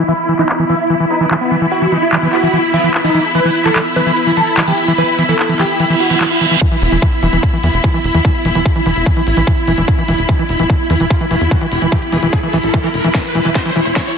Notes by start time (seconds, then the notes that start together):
Already playing: B3 E4 E5 B5
0.08 E3 E4, closed hi-hat
0.19 closed hi-hat
0.29 E3, closed hi-hat
0.39 E3 D#4, clap, closed hi-hat
0.49 clap, closed hi-hat
0.59 E3, closed hi-hat
0.70 E3 E4, closed hi-hat
0.80 closed hi-hat
0.90 E3, closed hi-hat
1.00 E3
1.10 B3 D#4, closed hi-hat
1.21 E3 B3, closed hi-hat
1.31 E3, clap, closed hi-hat
1.41 B3, closed hi-hat
1.51 E3, closed hi-hat
1.61 E3, closed hi-hat
1.72 F#4, closed hi-hat
1.82 E3, closed hi-hat
1.92 E3 D#4, closed hi-hat
2.02 E4, closed hi-hat
2.12 E3, clap, closed hi-hat
2.23 E3 B3, closed hi-hat
2.33 B3 F#4, clap, closed hi-hat
2.43 E3, closed hi-hat
2.53 E3, closed hi-hat
2.64 closed hi-hat
2.74 E3 B3 E4, closed hi-hat
2.84 E3, closed hi-hat
2.94 clap, closed hi-hat
3.04 E3 D#4, closed hi-hat
3.15 E3, closed hi-hat
3.25 closed hi-hat
3.35 E3 B4, closed hi-hat
3.45 E3, closed hi-hat
3.55 closed hi-hat
3.66 E3 A4, clap, closed hi-hat
3.76 E3, clap, closed hi-hat
3.86 closed hi-hat
3.96 E3 B4, closed hi-hat
4.06 E3, closed hi-hat
4.17 closed hi-hat
4.27 E3
4.37 E3 A4, closed hi-hat
4.47 closed hi-hat
4.57 E3, clap, closed hi-hat
4.68 E3 G4, closed hi-hat
4.78 closed hi-hat
4.88 E3, closed hi-hat
4.98 E3 B4, closed hi-hat
5.08 closed hi-hat
5.19 E3, closed hi-hat
5.29 E3 A4, closed hi-hat
5.39 clap, closed hi-hat
5.49 E3, closed hi-hat
5.59 E3 G4, clap, closed hi-hat
5.70 closed hi-hat
5.80 E3, closed hi-hat, reverse cymbal
5.90 E3, closed hi-hat
6.00 F#4, closed hi-hat
6.10 E3, closed hi-hat
6.21 E3, clap, closed hi-hat
6.31 E4, closed hi-hat
6.41 E3, closed hi-hat
6.51 E3, closed hi-hat
6.61 E3 E4, kick, closed hi-hat, riser
6.72 E3, closed hi-hat
6.82 E1, open hi-hat
6.92 E1 E3, closed hi-hat
7.02 E3, kick, closed hi-hat
7.12 closed hi-hat
7.23 E1 E3, open hi-hat
7.33 E1 E3, closed hi-hat
7.43 kick, closed hi-hat
7.53 E3
7.63 E2 E3, open hi-hat
7.74 E1, closed hi-hat
7.84 E3, kick, closed hi-hat
7.94 E3, closed hi-hat
8.04 E1, open hi-hat
8.14 E2 E3, closed hi-hat
8.25 E3, kick, closed hi-hat
8.35 closed hi-hat
8.45 E1 E3, open hi-hat
8.55 E1 E3, closed hi-hat
8.66 kick, closed hi-hat
8.76 E3, closed hi-hat
8.86 E1 E3, open hi-hat
8.96 E1, closed hi-hat
9.06 E3, kick, closed hi-hat
9.17 E3, closed hi-hat
9.27 A1, open hi-hat
9.37 A1 E3, closed hi-hat
9.47 E3, kick, closed hi-hat
9.57 closed hi-hat
9.68 E1 E3, open hi-hat
9.78 E1 E3, closed hi-hat
9.88 kick, closed hi-hat
9.98 E3, closed hi-hat
10.08 E1 E3, open hi-hat
10.19 E1, closed hi-hat
10.29 E3, kick, closed hi-hat
10.39 E3, closed hi-hat
10.49 E1, open hi-hat
10.59 E1 E3, closed hi-hat
10.70 E3, kick, closed hi-hat
10.90 E2 E3, open hi-hat
11.00 E1 E3, closed hi-hat
11.10 kick, closed hi-hat
11.21 E3, closed hi-hat
11.31 E1 E3, open hi-hat
11.41 E2, closed hi-hat
11.51 E3, kick, closed hi-hat
11.61 E3, closed hi-hat
11.72 E1, open hi-hat
11.82 E1 E3, closed hi-hat
11.92 E3, kick, closed hi-hat
12.02 closed hi-hat
12.12 E1 E3, open hi-hat
12.23 E1 E3, closed hi-hat
12.33 kick, closed hi-hat
12.43 E3, closed hi-hat
12.53 A1 E3, open hi-hat
12.63 A1, closed hi-hat
12.74 E3, kick, closed hi-hat
12.84 E3, closed hi-hat
12.94 E1, open hi-hat
13.04 E1 E3, closed hi-hat
13.15 E3, kick, snare, closed hi-hat
13.25 closed hi-hat
13.35 E1 E3, open hi-hat
13.45 E1 E3, closed hi-hat
13.55 kick, snare, closed hi-hat
13.66 E3, closed hi-hat
13.76 E1 E3, open hi-hat
13.86 E1, closed hi-hat
13.96 E3, kick, snare, closed hi-hat